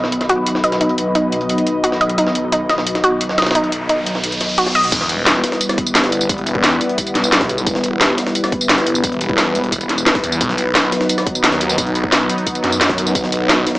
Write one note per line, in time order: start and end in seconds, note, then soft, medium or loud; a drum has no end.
0.00 4.91 B1 medium
0.00 4.88 F#3 medium
0.00 4.88 B3 medium
0.00 4.92 B3 medium
0.00 4.88 D#4 medium
0.00 4.92 F#4 medium
0.00 4.88 B4 medium
0.00 4.92 D#5 medium
0.00 4.92 B5 medium
0.00 snare soft
0.12 closed hi-hat medium
0.21 snare soft
0.21 closed hi-hat soft
0.29 0.38 F#4 loud
0.29 closed hi-hat medium
0.47 closed hi-hat medium
0.55 snare soft
0.64 0.72 D#5 medium
0.64 closed hi-hat medium
0.72 snare soft
0.72 closed hi-hat soft
0.81 0.94 D#4 medium
0.81 closed hi-hat medium
0.89 closed hi-hat soft
0.98 closed hi-hat medium
1.15 1.28 D#4 medium
1.15 closed hi-hat medium
1.32 closed hi-hat medium
1.41 closed hi-hat soft
1.49 closed hi-hat medium
1.58 closed hi-hat soft
1.67 closed hi-hat medium
1.84 1.92 F#4 medium
1.84 closed hi-hat medium
1.92 snare soft
2.01 2.09 D#5 medium
2.01 closed hi-hat medium
2.10 closed hi-hat soft
2.18 2.23 D#4 medium
2.18 closed hi-hat medium
2.18 riser medium
2.27 snare soft
2.35 closed hi-hat medium
2.52 2.61 D#4 medium
2.52 closed hi-hat medium
2.69 2.82 D#5 medium
2.69 snare soft
2.69 closed hi-hat medium
2.78 snare soft
2.87 closed hi-hat medium
2.95 snare soft
2.95 closed hi-hat soft
3.04 3.12 F#4 loud
3.04 closed hi-hat medium
3.21 closed hi-hat medium
3.29 snare soft
3.38 3.47 D#5 medium
3.38 snare medium
3.38 closed hi-hat medium
3.42 snare medium
3.42 closed hi-hat medium
3.46 snare medium
3.46 closed hi-hat medium
3.46 closed hi-hat soft
3.51 snare medium
3.51 closed hi-hat medium
3.55 3.68 D#4 medium
3.55 closed hi-hat medium
3.55 closed hi-hat loud
3.64 closed hi-hat soft
3.72 closed hi-hat medium
3.89 4.02 D#4 medium
3.89 closed hi-hat medium
3.89 closed hi-hat loud
4.06 closed hi-hat medium
4.15 snare soft
4.24 closed hi-hat medium
4.32 closed hi-hat soft
4.32 closed hi-hat medium
4.41 snare soft
4.41 closed hi-hat medium
4.49 closed hi-hat medium
4.58 4.67 F#4 medium
4.58 closed hi-hat medium
4.66 snare soft
4.66 closed hi-hat soft
4.75 4.84 D#5 medium
4.75 closed hi-hat medium
4.84 closed hi-hat soft
4.92 5.42 E1 loud
4.92 10.37 G3 medium
4.92 10.37 B3 medium
4.92 10.37 E4 medium
4.92 13.79 B4 medium
4.92 kick loud
4.92 closed hi-hat medium
4.92 closed hi-hat loud
4.92 crash loud
4.92 tambourine soft
5.01 snare soft
5.09 closed hi-hat medium
5.09 tambourine soft
5.26 snare loud
5.26 closed hi-hat loud
5.26 tambourine soft
5.44 snare soft
5.44 closed hi-hat medium
5.44 tambourine soft
5.52 snare soft
5.61 closed hi-hat medium
5.61 tambourine soft
5.69 cross-stick soft
5.69 snare soft
5.69 closed hi-hat soft
5.69 tambourine soft
5.78 kick loud
5.78 closed hi-hat medium
5.87 tambourine medium
5.95 6.28 G1 loud
5.95 snare loud
5.95 closed hi-hat medium
5.95 closed hi-hat loud
5.95 tambourine soft
6.04 snare soft
6.04 closed hi-hat soft
6.12 closed hi-hat medium
6.12 tambourine soft
6.21 tambourine medium
6.29 6.79 E1 loud
6.29 kick loud
6.29 closed hi-hat medium
6.29 tambourine soft
6.38 closed hi-hat soft
6.47 closed hi-hat medium
6.47 tambourine soft
6.55 kick loud
6.64 snare loud
6.64 closed hi-hat medium
6.64 closed hi-hat loud
6.64 tambourine soft
6.81 closed hi-hat medium
6.81 tambourine soft
6.89 closed hi-hat soft
6.98 kick medium
6.98 closed hi-hat medium
6.98 closed hi-hat loud
6.98 tambourine soft
7.07 closed hi-hat soft
7.07 tambourine soft
7.15 7.65 B1 loud
7.15 snare soft
7.15 closed hi-hat medium
7.24 tambourine medium
7.32 snare loud
7.32 closed hi-hat medium
7.32 tambourine soft
7.41 kick loud
7.41 snare soft
7.41 closed hi-hat soft
7.49 closed hi-hat medium
7.49 tambourine soft
7.58 tambourine medium
7.67 8.17 E1 loud
7.67 kick loud
7.67 closed hi-hat medium
7.67 tambourine soft
7.75 snare soft
7.84 closed hi-hat medium
7.84 tambourine soft
8.01 snare loud
8.01 closed hi-hat medium
8.01 tambourine medium
8.18 snare soft
8.18 closed hi-hat medium
8.18 tambourine soft
8.27 snare soft
8.35 closed hi-hat medium
8.35 tambourine soft
8.44 cross-stick soft
8.44 snare soft
8.44 closed hi-hat soft
8.44 tambourine soft
8.52 kick loud
8.52 closed hi-hat medium
8.61 tambourine medium
8.69 9.02 G1 loud
8.69 snare loud
8.69 closed hi-hat medium
8.69 tambourine soft
8.78 snare soft
8.78 closed hi-hat soft
8.87 closed hi-hat medium
8.87 tambourine soft
8.95 tambourine medium
9.04 9.54 E1 loud
9.04 kick loud
9.04 closed hi-hat medium
9.04 tambourine soft
9.12 closed hi-hat soft
9.21 closed hi-hat medium
9.21 tambourine soft
9.29 kick loud
9.38 snare loud
9.38 closed hi-hat medium
9.38 tambourine medium
9.55 9.71 E1 medium
9.55 closed hi-hat medium
9.55 tambourine soft
9.64 closed hi-hat soft
9.72 10.22 E1 loud
9.72 kick medium
9.72 closed hi-hat medium
9.72 tambourine soft
9.81 closed hi-hat soft
9.81 tambourine soft
9.89 snare soft
9.89 closed hi-hat medium
9.98 tambourine medium
10.06 snare loud
10.06 closed hi-hat medium
10.06 tambourine soft
10.15 kick loud
10.15 snare soft
10.15 closed hi-hat soft
10.24 10.39 E2 loud
10.24 closed hi-hat medium
10.24 tambourine soft
10.32 tambourine medium
10.41 10.91 B1 loud
10.41 13.79 F#3 medium
10.41 13.79 B3 medium
10.41 13.79 D#4 medium
10.41 kick loud
10.41 closed hi-hat medium
10.41 tambourine medium
10.49 snare soft
10.58 closed hi-hat medium
10.58 tambourine soft
10.75 snare loud
10.75 closed hi-hat medium
10.75 tambourine medium
10.92 snare soft
10.92 closed hi-hat medium
10.92 tambourine soft
11.01 snare soft
11.09 closed hi-hat medium
11.09 tambourine medium
11.18 cross-stick soft
11.18 snare soft
11.18 closed hi-hat soft
11.18 tambourine soft
11.27 kick loud
11.27 closed hi-hat medium
11.35 tambourine medium
11.44 11.77 D#2 loud
11.44 snare loud
11.44 closed hi-hat medium
11.44 tambourine soft
11.52 snare soft
11.52 closed hi-hat soft
11.61 closed hi-hat medium
11.61 tambourine soft
11.70 tambourine medium
11.78 12.28 B1 loud
11.78 kick loud
11.78 closed hi-hat medium
11.78 closed hi-hat loud
11.78 tambourine soft
11.87 closed hi-hat soft
11.95 closed hi-hat medium
11.95 tambourine soft
12.04 kick loud
12.12 snare loud
12.12 closed hi-hat medium
12.12 closed hi-hat loud
12.12 tambourine medium
12.29 closed hi-hat medium
12.29 tambourine soft
12.38 closed hi-hat soft
12.47 kick medium
12.47 closed hi-hat medium
12.47 tambourine soft
12.55 closed hi-hat soft
12.55 tambourine soft
12.64 13.14 F#2 loud
12.64 snare soft
12.64 closed hi-hat medium
12.72 tambourine medium
12.81 snare loud
12.81 closed hi-hat medium
12.81 tambourine soft
12.89 kick loud
12.89 snare soft
12.89 closed hi-hat soft
12.98 closed hi-hat medium
12.98 tambourine soft
13.07 tambourine medium
13.15 13.65 B1 loud
13.15 kick loud
13.15 closed hi-hat medium
13.15 closed hi-hat loud
13.15 tambourine medium
13.24 snare soft
13.32 closed hi-hat medium
13.32 tambourine soft
13.49 snare loud
13.49 closed hi-hat medium
13.49 closed hi-hat loud
13.49 tambourine medium
13.67 snare soft
13.67 closed hi-hat medium
13.67 tambourine soft
13.75 snare soft